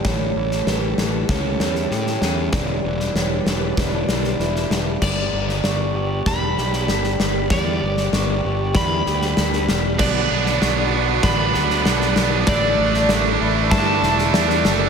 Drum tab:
CC |----------------|----------------|x---------------|----------------|
SD |o--oo-o-o-ooooo-|o--oo-o-o-ooooo-|o--oo---o-ooooo-|o--oo---o-ooooo-|
BD |o-------o-------|o-------o-------|o-------o-------|o-------o-------|

CC |x---------------|----------------|
SD |o--oo---o-ooooo-|o--oo---o-ooooo-|
BD |o-------o-------|o-------o-------|